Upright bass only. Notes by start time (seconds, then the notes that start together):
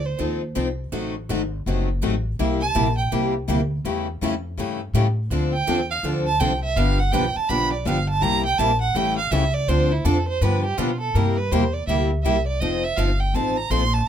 Already playing: D2
0.20 D#2
0.56 C2
0.92 A1
1.29 G#1
1.66 F#1
2.03 A1
2.39 C2
2.75 A#1
3.12 C2
3.48 D2
3.85 E2
4.22 F2
4.58 G2
4.93 A2
5.30 D2
5.67 E2
6.03 D2
6.40 C2
6.76 G1
7.12 B1
7.36 muted upright bass stroke
7.49 B1
7.86 G1
8.22 C2
8.59 A#1
8.95 A1
9.31 C#2
9.68 D2
10.05 F2
10.41 G2
10.78 B2
11.15 G2
11.51 E2
11.87 D2
12.25 C2
12.61 F1
12.97 G1
13.33 A1
13.70 A#1